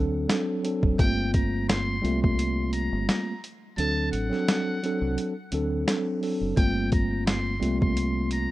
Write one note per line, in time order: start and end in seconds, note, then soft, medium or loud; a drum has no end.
0.00 0.26 D2 medium
0.00 0.26 F#3 medium
0.00 0.27 C4 medium
0.00 0.27 D4 medium
0.00 0.28 A4 loud
0.28 0.61 F#3 medium
0.28 0.61 C4 medium
0.28 0.62 D4 medium
0.28 0.62 A4 medium
0.28 snare loud
0.28 closed hi-hat loud
0.63 0.96 F#3 medium
0.63 0.96 C4 medium
0.63 0.97 D4 medium
0.63 0.97 A4 medium
0.63 closed hi-hat medium
0.83 0.97 F#1 medium
0.83 kick loud
0.97 2.00 G1 loud
0.97 1.95 G3 medium
0.97 1.96 A3 loud
0.97 1.95 A#3 medium
0.97 1.96 C4 medium
0.97 1.96 F4 medium
0.97 1.31 G5 loud
0.97 kick loud
0.97 closed hi-hat medium
1.33 1.65 A#5 medium
1.33 kick medium
1.33 closed hi-hat medium
1.69 2.19 C6 medium
1.69 snare loud
1.69 closed hi-hat loud
2.02 2.88 C2 medium
2.02 3.32 G3 loud
2.02 3.33 A3 loud
2.02 3.32 A#3 medium
2.02 3.33 C4 medium
2.02 3.33 F4 medium
2.02 closed hi-hat medium
2.22 2.70 C6 medium
2.22 kick loud
2.39 closed hi-hat medium
2.73 3.05 A#5 medium
2.73 closed hi-hat medium
2.92 3.07 G1 medium
3.09 3.40 A#5 medium
3.09 snare loud
3.09 closed hi-hat loud
3.44 closed hi-hat medium
3.77 4.09 D2 loud
3.77 4.27 F#3 medium
3.77 4.27 C4 medium
3.77 4.28 D4 medium
3.77 4.28 A4 loud
3.77 4.09 A5 loud
3.77 closed hi-hat medium
4.12 4.30 A1 medium
4.12 5.32 F#5 medium
4.12 closed hi-hat medium
4.29 4.78 F#3 medium
4.29 4.78 C4 medium
4.29 4.79 D4 medium
4.29 4.79 A4 loud
4.29 snare soft
4.48 snare loud
4.48 closed hi-hat loud
4.83 5.32 F#3 medium
4.83 5.33 C4 medium
4.83 5.33 D4 medium
4.83 5.34 A4 loud
4.83 closed hi-hat medium
5.02 5.16 C2 loud
5.18 closed hi-hat medium
5.52 5.84 D2 medium
5.52 5.84 F#3 medium
5.52 5.85 C4 medium
5.52 5.85 D4 medium
5.52 5.86 A4 loud
5.52 closed hi-hat medium
5.86 6.19 F#3 medium
5.86 6.19 C4 medium
5.86 6.20 D4 medium
5.86 6.20 A4 medium
5.86 snare loud
5.86 closed hi-hat loud
6.21 6.54 F#3 medium
6.21 6.54 C4 medium
6.21 6.55 D4 medium
6.21 6.55 A4 medium
6.21 open hi-hat medium
6.41 6.55 F#1 medium
6.55 7.58 G1 loud
6.55 7.53 G3 medium
6.55 7.54 A3 medium
6.55 7.53 A#3 medium
6.55 7.54 C4 medium
6.55 7.54 F4 medium
6.55 6.88 G5 loud
6.55 kick loud
6.55 closed hi-hat medium
6.92 7.24 A#5 medium
6.92 kick medium
6.92 closed hi-hat medium
7.26 7.77 C6 medium
7.26 snare loud
7.26 closed hi-hat medium
7.60 8.46 C2 medium
7.60 8.51 G3 loud
7.60 8.51 A3 loud
7.60 8.51 A#3 medium
7.60 8.51 C4 medium
7.60 8.51 F4 medium
7.60 closed hi-hat medium
7.81 8.29 C6 medium
7.81 kick loud
7.97 closed hi-hat medium
8.31 8.51 A#5 medium
8.31 closed hi-hat medium